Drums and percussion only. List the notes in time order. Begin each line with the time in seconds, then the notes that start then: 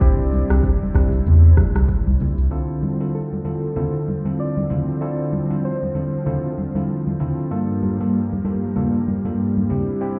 0.01 kick, shaker
0.33 high conga, shaker
0.50 cross-stick, high conga, shaker
0.63 kick, shaker
0.83 high conga
0.94 kick, cross-stick, open hi-hat, high conga, shaker
1.12 shaker
1.26 low conga, shaker
1.57 kick, cross-stick, high conga, shaker
1.75 cross-stick, high conga, shaker
1.88 kick, shaker
2.07 high conga
2.20 open hi-hat, low conga, shaker
2.38 shaker
2.83 high conga
3.01 high conga
3.33 high conga
3.45 high conga
3.77 low conga
4.08 high conga
4.25 high conga
4.57 high conga
4.71 low conga
5.33 high conga
5.51 high conga
5.83 high conga
5.95 high conga
6.27 low conga
6.58 high conga
6.75 high conga
7.07 high conga
7.21 low conga
7.83 high conga
8.01 high conga
8.33 high conga
8.45 high conga
8.77 low conga
9.08 high conga
9.25 high conga
9.57 high conga
9.71 low conga